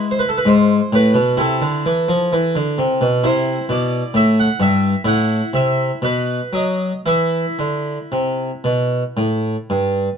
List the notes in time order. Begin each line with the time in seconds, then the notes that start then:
Already playing: G#3 E4
0.11 C5
0.19 B4
0.29 A4
0.38 B4
0.46 G#2 C5
0.93 A2 B4
1.14 B2
1.37 C3 E4 A4
1.61 D3
1.86 E3
2.08 F3
2.33 E3
2.55 D3
2.78 C3
3.01 B2
3.24 C3 E4 C5
3.69 B2 D5
4.14 A2 E5
4.40 F#5
4.60 G2 E5
5.04 A2 E4 F#5
5.53 C3 E5
6.02 B2 B4
6.53 F#3 D#5
7.06 E3 E4 E5
7.59 D3
8.12 C3
8.64 B2
9.17 A2
9.70 G2